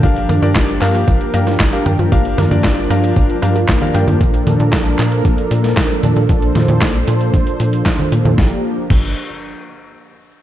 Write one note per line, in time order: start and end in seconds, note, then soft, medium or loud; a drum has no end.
0.03 0.27 G1 loud
0.03 0.10 F3 medium
0.03 8.34 F3 medium
0.03 8.34 A#3 medium
0.03 8.34 D4 medium
0.03 0.39 D4 medium
0.03 2.10 G4 medium
0.03 0.39 G4 medium
0.03 4.17 A#4 medium
0.03 0.39 A#4 medium
0.03 0.39 F5 loud
0.03 kick loud
0.03 closed hi-hat medium
0.16 closed hi-hat soft
0.29 0.41 G2 medium
0.29 0.41 A#3 loud
0.29 closed hi-hat medium
0.29 high conga medium
0.42 0.54 G2 loud
0.42 0.54 F3 medium
0.42 0.79 D4 medium
0.42 0.79 G4 medium
0.42 0.79 A#4 medium
0.42 0.79 D5 loud
0.42 closed hi-hat soft
0.55 0.79 G1 medium
0.55 0.62 F3 medium
0.55 kick loud
0.55 snare loud
0.55 clap medium
0.55 closed hi-hat medium
0.69 closed hi-hat soft
0.81 1.05 G2 loud
0.81 0.93 A#3 loud
0.81 1.31 D4 medium
0.81 1.31 G4 medium
0.81 1.31 A#4 medium
0.81 1.31 F5 loud
0.81 clap medium
0.81 closed hi-hat medium
0.95 1.06 F3 medium
0.95 closed hi-hat soft
1.08 1.19 G1 medium
1.08 1.15 F3 medium
1.08 kick loud
1.08 closed hi-hat medium
1.21 closed hi-hat soft
1.34 1.57 G2 medium
1.34 1.45 A#3 loud
1.34 1.48 D4 medium
1.34 1.48 G4 medium
1.34 1.48 A#4 medium
1.34 1.48 F5 medium
1.34 closed hi-hat medium
1.47 1.58 F3 medium
1.47 snare soft
1.47 closed hi-hat soft
1.60 1.72 G1 medium
1.60 1.67 F3 medium
1.60 kick loud
1.60 snare loud
1.60 clap medium
1.60 closed hi-hat medium
1.73 1.84 D4 medium
1.73 1.84 G4 medium
1.73 1.84 A#4 medium
1.73 1.84 F5 medium
1.73 closed hi-hat soft
1.86 1.98 G2 medium
1.86 1.97 A#3 medium
1.86 2.09 D4 medium
1.86 2.09 G4 medium
1.86 2.09 A#4 medium
1.86 2.09 G5 medium
1.86 closed hi-hat medium
1.86 high conga medium
1.99 2.11 G2 medium
1.99 2.11 F3 medium
1.99 closed hi-hat soft
2.12 2.35 G1 loud
2.12 2.19 F3 medium
2.12 2.48 D4 medium
2.12 4.19 F4 medium
2.12 2.48 G4 medium
2.12 2.48 A#4 medium
2.12 2.48 F5 loud
2.12 kick loud
2.12 closed hi-hat medium
2.25 closed hi-hat soft
2.38 2.50 G2 medium
2.38 2.50 A#3 loud
2.38 snare soft
2.38 closed hi-hat medium
2.38 high conga medium
2.51 2.63 G2 loud
2.51 2.63 F3 medium
2.51 2.87 D4 medium
2.51 2.87 G4 medium
2.51 2.87 A#4 medium
2.51 2.87 D5 loud
2.51 closed hi-hat soft
2.51 high conga medium
2.64 2.88 G1 medium
2.64 2.71 F3 medium
2.64 kick loud
2.64 snare loud
2.64 clap medium
2.64 closed hi-hat medium
2.77 closed hi-hat soft
2.90 3.13 G2 loud
2.90 3.02 A#3 loud
2.90 3.39 D4 loud
2.90 3.39 G4 medium
2.90 3.39 A#4 medium
2.90 3.39 F5 loud
2.90 closed hi-hat medium
3.03 3.15 F3 medium
3.03 closed hi-hat soft
3.16 3.28 G1 medium
3.16 3.23 F3 medium
3.16 kick loud
3.16 closed hi-hat medium
3.30 closed hi-hat soft
3.42 3.66 G2 medium
3.42 3.54 A#3 loud
3.42 3.57 D4 medium
3.42 3.57 G4 medium
3.42 3.57 A#4 medium
3.42 3.57 F5 loud
3.42 closed hi-hat medium
3.55 3.67 F3 medium
3.55 closed hi-hat soft
3.68 3.80 G1 medium
3.68 3.75 F3 medium
3.68 kick loud
3.68 snare loud
3.68 clap medium
3.68 closed hi-hat medium
3.82 3.93 D4 medium
3.82 3.93 G4 medium
3.82 3.93 A#4 medium
3.82 3.93 F5 loud
3.82 closed hi-hat soft
3.82 high conga medium
3.94 4.06 G2 medium
3.94 4.06 A#3 loud
3.94 4.18 D4 medium
3.94 4.18 G4 medium
3.94 4.18 A#4 medium
3.94 4.18 G5 medium
3.94 closed hi-hat medium
4.08 4.19 G2 medium
4.08 4.19 F3 medium
4.08 closed hi-hat soft
4.08 high conga medium
4.21 4.44 A#1 loud
4.21 8.34 A4 medium
4.21 6.27 A#4 medium
4.21 kick loud
4.21 closed hi-hat medium
4.34 closed hi-hat soft
4.47 4.58 A#2 medium
4.47 closed hi-hat medium
4.47 high conga medium
4.60 4.71 A#2 loud
4.60 closed hi-hat soft
4.73 4.96 A#1 medium
4.73 kick loud
4.73 snare loud
4.73 clap medium
4.73 closed hi-hat medium
4.86 closed hi-hat soft
4.99 5.22 A#2 loud
4.99 clap medium
4.99 closed hi-hat medium
5.12 closed hi-hat soft
5.25 5.37 A#1 medium
5.25 kick loud
5.25 closed hi-hat medium
5.38 closed hi-hat soft
5.51 5.74 A#2 medium
5.51 closed hi-hat medium
5.64 snare soft
5.64 closed hi-hat soft
5.77 5.89 A#1 medium
5.77 kick loud
5.77 snare loud
5.77 clap medium
5.77 closed hi-hat medium
5.90 closed hi-hat soft
6.03 6.15 A#2 medium
6.03 closed hi-hat medium
6.03 high conga medium
6.16 6.28 A#2 medium
6.16 closed hi-hat soft
6.29 6.53 A#1 loud
6.29 8.36 C5 medium
6.29 kick loud
6.29 closed hi-hat medium
6.42 closed hi-hat soft
6.55 6.67 A#2 medium
6.55 snare soft
6.55 closed hi-hat medium
6.55 high conga medium
6.68 6.80 A#2 loud
6.68 closed hi-hat soft
6.68 high conga medium
6.82 7.05 A#1 medium
6.82 kick loud
6.82 snare loud
6.82 clap medium
6.82 closed hi-hat medium
6.95 closed hi-hat soft
7.08 7.31 A#2 loud
7.08 closed hi-hat medium
7.21 closed hi-hat soft
7.34 7.45 A#1 medium
7.34 kick loud
7.34 closed hi-hat medium
7.47 closed hi-hat soft
7.60 7.83 A#2 medium
7.60 closed hi-hat medium
7.73 closed hi-hat soft
7.86 7.98 A#1 medium
7.86 kick loud
7.86 snare loud
7.86 clap medium
7.86 closed hi-hat medium
7.99 closed hi-hat soft
7.99 high conga medium
8.12 8.24 A#2 medium
8.12 closed hi-hat medium
8.25 8.37 A#2 loud
8.25 closed hi-hat soft
8.25 high conga medium
8.38 8.53 G1 loud
8.38 8.62 F3 medium
8.38 8.62 A#3 medium
8.38 8.62 D4 medium
8.38 8.62 G4 medium
8.38 8.62 A#4 medium
8.38 kick loud
8.38 snare medium
8.90 9.15 G1 medium
8.90 kick loud
8.90 crash medium